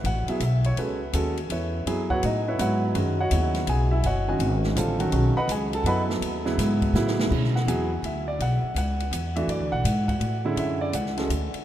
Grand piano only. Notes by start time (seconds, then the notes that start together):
0.06 F#5
0.28 F#3 B3 E4 G#4 E5
0.43 E5
0.66 C#5
0.79 G#3 C#4 F#4 A4 B4
1.14 G#3 C#4 F#4 A4
1.52 E4 B4 C#5 E5
1.87 F#3 B3 E4 G#4
2.10 F#4 B4 C#5 F#5
2.25 D#4 D#5
2.48 E4 B4 C#5 E5
2.58 F#3 B3 E4 F#4 B4 C#5 F#5
2.95 D#3 G#3 C#4 F#4
3.20 F#4 C#5 D#5 F#5
3.32 C#3 F#3 B3 E4
3.69 G#4 G#5
3.91 E4 E5
4.06 F#4 C#5 D#5 F#5
4.28 D#3 G#3 C#4 F#4 G#4 G#5
4.76 D3 G3 C4 F4 A4 A5
5.00 D#3 F#3 C#4 F#4
5.13 D#3 G#3 C#4 F#4
5.37 B4 D#5 F#5 B5
5.52 G#4 G#5
5.75 A4 A5
5.86 F#3 B3 E4 A4 B4 D#5 F#5 B5
6.45 C#3 F#3 B3 E4
6.95 C#3 F#3 B3 E4
7.31 D3 G#3 C#4 E4
7.56 F#5
7.68 F#3 B3 E4 G#4
8.05 E5
8.28 D5
8.42 F#5
8.78 F#5
9.36 E3 A3 D4 F#4 E5
9.50 D5
9.72 F#5
10.08 F#5
10.45 D3 G#3 C#4 E4
10.59 E5
10.81 D5
10.95 F#5
11.17 G#3 C#4 F#4 A4